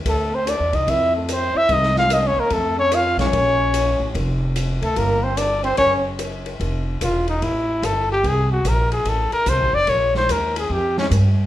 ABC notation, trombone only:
X:1
M:4/4
L:1/8
Q:"Swing" 1/4=147
K:Bblyd
V:1 name="Trombone"
A, C D _E =E A, C E | _E F (3E _D B, A, D F D- | _D4 z3 A, | B, C D C _D z3 |
z8 | z8 | z8 |]